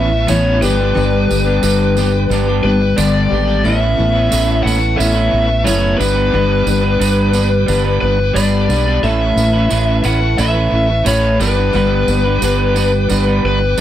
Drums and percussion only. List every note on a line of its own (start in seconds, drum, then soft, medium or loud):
0.28 tambourine medium
0.62 tambourine medium
0.97 tambourine soft
1.31 tambourine medium
1.63 tambourine medium
1.97 tambourine medium
2.31 tambourine medium
2.98 tambourine loud
3.65 tambourine soft
4.32 tambourine medium
4.67 tambourine medium
5.00 tambourine medium
5.67 tambourine loud
6.01 tambourine medium
6.67 tambourine medium
7.01 tambourine medium
7.33 tambourine medium
7.68 tambourine medium
8.36 tambourine medium
8.70 tambourine medium
9.04 tambourine soft
9.38 tambourine medium
9.70 tambourine medium
10.04 tambourine medium
10.38 tambourine medium
11.06 tambourine loud
11.40 tambourine medium
11.73 tambourine soft
12.08 tambourine medium
12.42 tambourine medium
12.76 tambourine medium
13.09 tambourine medium
13.78 tambourine loud